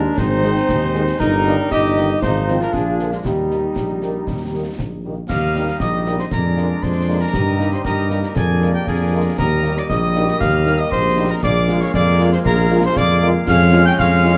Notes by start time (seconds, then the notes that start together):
Already playing: G#3 D4 D#4 A#4
0.17 G#1 C4 D#4 C5, concert bass drum, snare
0.43 D#3 G#3 D#4, snare
0.56 snare
0.68 D#2, concert bass drum, snare
0.94 D#3 G#3 D#4, snare
1.07 snare
1.20 G1 G3 D#4 A#4, concert bass drum, snare, crash
1.45 D#3 A#3 D4 D#4, snare
1.71 G1 D#4 G4 D#5, concert bass drum, snare
1.97 D#3 A#3 D#4, snare
2.22 G#1 F3 D#4 F4 C5, concert bass drum, snare
2.48 D#3 F3 C4, snare
2.61 D4 A#4, snare
2.73 A#1 D4 G#4, concert bass drum, snare
2.99 D3 F3 A#3, snare
3.11 G#3 F4, snare
3.25 D#2 G3 D#4 G4, concert bass drum, snare
3.50 D#3 G3 A#3, snare
3.76 A#1, concert bass drum, snare
4.02 D#3 G3 A#3, snare
4.27 D#2, concert bass drum, snare
4.53 D#3 G3 A#3
4.78 A#1, concert bass drum, snare
5.04 D#3 G3 A#3
5.28 D#2 G3 D#4 G4 D#5 F5 F6, concert bass drum, snare, crash
5.55 G3 A#3 D#4, snare
5.67 snare
5.80 A#1 G4 D#5 D#6, concert bass drum, snare
6.06 G3 A#3 D#4, snare
6.19 C5 C6, snare
6.31 F2 G#3 D4 G#4 A#4 D5 A#5, concert bass drum, snare
6.57 G#3 A#3 D4, snare
6.83 F2 C5 C6, concert bass drum, snare
7.08 G#3 A#3 D4
7.21 A#4 A#5
7.33 G2 G3 D#4 G4 D#5, concert bass drum, snare
7.58 G3 A#3 D#4, snare
7.72 C5 C6, snare
7.85 G2 G4 A#4 D#5 A#5, concert bass drum, snare
8.10 G3 A#3 D#4, snare
8.23 snare
8.35 F2 A#3 D4 G#4 A#4 D5 G#5, concert bass drum, snare
8.60 G#3 A#3 D4, snare
8.74 G4 G5
8.87 F2 G#4 A#4 D5 G#5, concert bass drum, snare
9.12 G#3 A#3 D4
9.38 D#2 G3 A#3 G4 A#4 D#5 A#5, concert bass drum, snare, crash
9.63 G3 A#3 D#4, snare
9.77 D5 D6, snare
9.89 A#1 G4 D#5 D#6, concert bass drum, snare
10.15 G3 A#3 D#4, snare
10.28 snare
10.40 D#2 F5 F6, concert bass drum, snare
10.66 G3 A#3 D#4, snare
10.78 D#5 D#6
10.91 A#1 C5 C6, concert bass drum, snare
11.17 G3 A#3 D#4
11.30 A#4 A#5
11.43 A#1 G#3 A#3 G#4 D5 F5 D6, concert bass drum, snare
11.68 G#3 A#3 F4, snare
11.81 C#5 C#6, snare
11.94 F2 G#4 D5 F5 D6, concert bass drum, snare
12.19 G#3 A#3 F4, snare
12.32 C5 C6, snare
12.45 A#1 G#4 A#4 F5 A#5, concert bass drum, snare
12.71 G#3 A#3 F4
12.85 C5 C6
12.96 F2 G#4 D5 F5 D6, concert bass drum, snare
13.22 G#3 A#3 F4
13.47 F2 G#3 C#4 G#4 C#5 F5 F6, concert bass drum, snare, crash
13.73 G#3 C#4 F4, snare
13.85 G5 G6, snare
13.99 F2 G#4 C#5 F5 F6, concert bass drum, snare
14.24 G#3 C#4 F4, snare